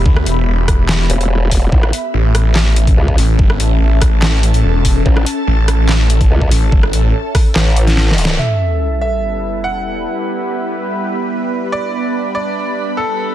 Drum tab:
HH |------x-----------x-----------x--x--------o-----|------x-----------x-----------x--x--------o-----|------x-----------x-----------x--x--------o-----|------x-----------x-----------x--x--------o-----|
CP |------------------------x-----------------------|------------------------x-----------------------|------------------------x-----------------------|------------------------x-----------------------|
SD |---r--------------r-----o-----------------------|---r--------------r-----o-----------------------|---r--------------r-----o-----------------------|---r--------------r-----o-----------------------|
BD |o-----------------o-----------------------o-----|o--------------------------------o-----o--------|o-----------------o-----------------------o-----|o--------------------------------o-----o--------|

HH |------x-----------o-----------x--x--------o-----|------------------------------------------------|------------------------------------------------|------------------------------------------------|
CP |------------------------x-----------------------|------------------------------------------------|------------------------------------------------|------------------------------------------------|
SD |---r--------------r-----o--------o--o---o---o---|------------------------------------------------|------------------------------------------------|------------------------------------------------|
BD |o-----------------o-----------------------------|------------------------------------------------|------------------------------------------------|------------------------------------------------|